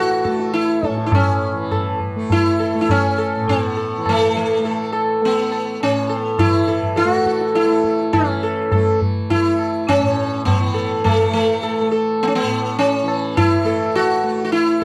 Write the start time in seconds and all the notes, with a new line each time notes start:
Already playing: A2 E3 A3 F#4
0.10 tabla te
0.24 A3 A4, tabla ke
0.40 tabla te
0.54 E4, tabla te
0.69 tabla te
0.83 A4, tabla ke
0.89 A2 C#4
0.97 tabla te
1.06 E4
1.12 C#4, tabla na, tabla ge
1.52 E3
1.71 A4, tabla na, tabla ge
2.00 tabla ge
2.16 A3
2.30 E4, tabla tin, tabla ge
2.60 A4
2.75 A3
2.81 E4
2.89 C#4, tabla na, tabla ge
3.18 A4
3.36 A2
3.48 C4, tabla tin, tabla ge
3.64 B3
3.77 A4
3.98 E3
4.06 A3, tabla na, tabla ge
4.37 A3
4.59 A3
4.64 A4, tabla tin
4.92 A4, tabla na
5.21 A3 B3, tabla tin
5.52 tabla na
5.80 A2 C#4, tabla tin
6.09 A4
6.22 B3
6.39 E4, tabla na, tabla ge
6.43 E3
6.68 A4, tabla te
6.83 tabla ge
6.96 F4 A4, tabla te
7.05 A3
7.12 F#4, tabla te
7.26 A4, tabla ke
7.41 tabla te
7.55 E4 A4, tabla te
7.65 A3
7.70 tabla te
7.84 tabla ke
7.99 tabla te
8.13 E3 C#4, tabla na, tabla ge
8.43 A4
8.72 A3 A4, tabla na, tabla ge
9.01 tabla ge
9.30 E4, tabla tin, tabla ge
9.35 A3
9.59 tabla na
9.88 C#4, tabla na, tabla ge
9.98 A2
10.45 B3, tabla tin, tabla ge
10.60 E3
10.74 A4
11.04 A3, tabla na, tabla ge
11.22 A3
11.33 A3
11.63 A4, tabla tin
11.81 A3
11.92 A4
12.21 B3, tabla tin
12.27 C#4
12.35 B3
12.43 A2
12.50 tabla na
12.79 C#4, tabla tin
13.03 E3
13.08 tabla na
13.37 E4, tabla na, tabla ge
13.64 A3 A4
13.95 F#4, tabla na
14.23 A3
14.45 F#4
14.52 E4, tabla te
14.67 tabla te